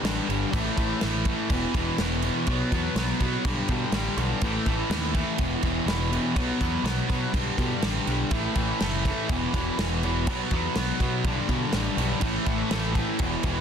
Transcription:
0.03 picked electric bass A1, overdriven electric guitar G2 D3 G3, snare, crash
0.29 picked electric bass G1, overdriven electric guitar G2 D3 G3, crash
0.51 picked electric bass A1, overdriven electric guitar A2 E3 A3, kick, crash
0.76 picked electric bass A1, overdriven electric guitar A2 E3 A3, kick, crash
1.01 picked electric bass A1, overdriven electric guitar A2 E3 A3, snare, crash
1.25 overdriven electric guitar A2 E3 A3, kick, crash
1.50 picked electric bass E1, overdriven electric guitar E2 B2 E3, kick, crash
1.74 picked electric bass E1, overdriven electric guitar E2 B2 E3, kick, crash
1.98 picked electric bass E1, overdriven electric guitar E2 B2 E3, snare, crash
2.22 overdriven electric guitar E2 B2 E3, crash
2.47 picked electric bass B1, overdriven electric guitar B2 F#3 B3, kick, crash
2.72 picked electric bass E2, overdriven electric guitar B2 F#3 B3, kick, crash
2.96 picked electric bass B1, overdriven electric guitar B2 F#3 B3, snare, crash
3.20 picked electric bass B2, overdriven electric guitar B2 F#3 B3, kick, crash
3.45 picked electric bass B1, overdriven electric guitar G2 D3 G3, kick, crash
3.68 overdriven electric guitar G2 D3 G3, picked electric bass B2, kick, crash
3.92 picked electric bass A1, overdriven electric guitar G2 D3 G3, snare, crash
4.17 picked electric bass B1, overdriven electric guitar G2 D3 G3, crash
4.41 picked electric bass A1, overdriven electric guitar A2 E3 A3, kick, crash
4.66 picked electric bass A1, overdriven electric guitar A2 E3 A3, kick, crash
4.90 picked electric bass D#2, overdriven electric guitar A2 E3 A3, snare, crash
5.14 overdriven electric guitar A2 E3 A3, kick, crash
5.38 picked electric bass E1, overdriven electric guitar E2 B2 E3, kick, crash
5.63 picked electric bass E1, overdriven electric guitar E2 B2 E3, kick, crash
5.86 picked electric bass E1, overdriven electric guitar E2 B2 E3, snare, crash
6.11 overdriven electric guitar E2 B2 E3, crash
6.35 picked electric bass B1, overdriven electric guitar B2 F#3 B3, kick, crash
6.61 picked electric bass E2, overdriven electric guitar B2 F#3 B3, kick, crash
6.84 picked electric bass B1, overdriven electric guitar B2 F#3 B3, snare, crash
7.09 overdriven electric guitar B2 F#3 B3, picked electric bass B2, kick, crash
7.33 picked electric bass B1, overdriven electric guitar G2 D3 G3, kick, crash
7.58 overdriven electric guitar G2 D3 G3, picked electric bass B2, kick, crash
7.82 picked electric bass A1, overdriven electric guitar G2 D3 G3, snare, crash
8.06 picked electric bass B1, overdriven electric guitar G2 D3 G3, crash
8.31 picked electric bass A1, overdriven electric guitar A2 E3 A3, kick, crash
8.55 picked electric bass A1, overdriven electric guitar A2 E3 A3, kick, crash
8.80 picked electric bass F#1, overdriven electric guitar A2 E3 A3, snare, crash
9.05 overdriven electric guitar A2 E3 A3, kick, crash
9.29 picked electric bass E1, overdriven electric guitar E2 B2 E3, kick, crash
9.54 picked electric bass E1, overdriven electric guitar E2 B2 E3, kick, crash
9.78 picked electric bass E1, overdriven electric guitar E2 B2 E3, snare, crash
10.03 overdriven electric guitar E2 B2 E3, crash
10.27 picked electric bass B1, overdriven electric guitar B2 F#3 B3, kick, crash
10.51 picked electric bass E2, overdriven electric guitar B2 F#3 B3, kick, crash
10.75 picked electric bass B1, overdriven electric guitar B2 F#3 B3, snare, crash
11.00 picked electric bass B2, overdriven electric guitar B2 F#3 B3, kick, crash
11.24 picked electric bass B1, overdriven electric guitar G2 D3 G3, kick, crash
11.48 overdriven electric guitar G2 D3 G3, picked electric bass B2, kick, crash
11.73 picked electric bass A1, overdriven electric guitar G2 D3 G3, snare, crash
11.97 picked electric bass B1, overdriven electric guitar G2 D3 G3, crash
12.21 picked electric bass A1, overdriven electric guitar A2 E3 A3, kick, crash
12.46 picked electric bass A1, overdriven electric guitar A2 E3 A3, kick, crash
12.70 picked electric bass A1, overdriven electric guitar A2 E3 A3, snare, crash
12.95 overdriven electric guitar A2 E3 A3, kick, crash
13.19 picked electric bass E1, overdriven electric guitar E2 B2 E3, kick, crash
13.43 picked electric bass E1, overdriven electric guitar E2 B2 E3, kick, crash

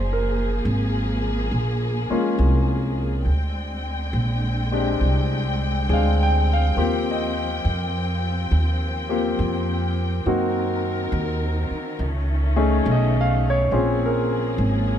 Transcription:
Already playing: upright bass F#1, string section F3 A#3 G#4, grand piano C5
0.13 grand piano A#4
0.65 upright bass G#1
1.51 upright bass A#1
2.10 grand piano G#3 A#3 C#4 F4, muted upright bass stroke
2.39 upright bass C2
3.26 upright bass D2, string section D3 G#3 C4 G5
4.13 upright bass A#1
4.72 grand piano G#3 C4 D4 G4
5.01 upright bass C2
5.89 upright bass D2, grand piano G#3 C4 D4 G#4
5.93 grand piano F5
6.23 grand piano G5
6.53 grand piano F5
6.77 upright bass D#2, string section F3, grand piano A#3 C4 F4 G4
7.11 grand piano D#5
7.65 upright bass F2
8.51 upright bass D#2
9.09 grand piano A#3 C4 F4 G4
9.39 upright bass F2
10.26 upright bass F#2, string section D#3 A#4, grand piano A#3 C4 D#4 F#4
11.12 upright bass D#2
11.70 muted upright bass stroke
11.99 upright bass C#2, string section A3 C#4
12.56 grand piano A3 C#4 D#4 G#4
12.86 upright bass B1
12.91 grand piano D#5
13.21 grand piano F5
13.50 grand piano C#5
13.71 upright bass A#1, string section F3 A#3 G#4, grand piano C4 C#4 F4 G#4
14.06 grand piano A#4
14.58 upright bass G#1

